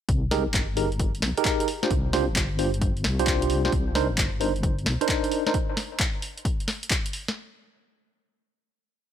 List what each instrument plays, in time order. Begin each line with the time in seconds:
0.09 wobble bass C2, kick, closed hi-hat
0.31 tine electric piano D#4 G4 G#4 A#4, snare, open hi-hat
0.47 wobble bass G1
0.54 kick, clap, closed hi-hat
0.77 tine electric piano D#4 G4 G#4 A#4, open hi-hat
0.92 closed hi-hat
1.00 kick, closed hi-hat
1.15 closed hi-hat
1.22 wobble bass C2, snare, open hi-hat
1.37 tine electric piano D#4 G4 G#4 A#4, closed hi-hat
1.45 kick, clap, closed hi-hat
1.60 closed hi-hat
1.68 open hi-hat
1.83 tine electric piano D4 F4 G4 C5, snare
1.91 wobble bass C2, kick, closed hi-hat
2.13 tine electric piano D4 F4 G4 C5, snare, open hi-hat
2.28 wobble bass G1
2.36 kick, clap, closed hi-hat
2.59 tine electric piano D4 F4 G4 C5, open hi-hat
2.74 closed hi-hat
2.81 kick, closed hi-hat
2.97 closed hi-hat
3.04 wobble bass C2, snare, open hi-hat
3.19 tine electric piano D4 F4 G4 C5, closed hi-hat
3.27 kick, clap, closed hi-hat
3.42 closed hi-hat
3.50 open hi-hat
3.65 tine electric piano D4 F4 G4 C5, snare
3.72 wobble bass C2, kick, closed hi-hat
3.95 tine electric piano D4 D#4 A#4 C5, snare, open hi-hat
4.10 wobble bass G1
4.18 kick, clap, closed hi-hat
4.41 tine electric piano D4 D#4 A#4 C5, open hi-hat
4.56 closed hi-hat
4.63 kick, closed hi-hat
4.79 closed hi-hat
4.86 wobble bass C2, snare, open hi-hat
5.01 tine electric piano D4 D#4 A#4 C5, closed hi-hat
5.09 kick, clap, closed hi-hat
5.24 closed hi-hat
5.32 open hi-hat
5.47 tine electric piano D4 D#4 A#4 C5, snare
5.54 kick, closed hi-hat
5.77 snare, open hi-hat
6.00 kick, clap, closed hi-hat
6.22 open hi-hat
6.38 closed hi-hat
6.45 kick, closed hi-hat
6.60 closed hi-hat
6.68 snare, open hi-hat
6.83 closed hi-hat
6.91 kick, clap, closed hi-hat
7.06 closed hi-hat
7.13 open hi-hat
7.28 snare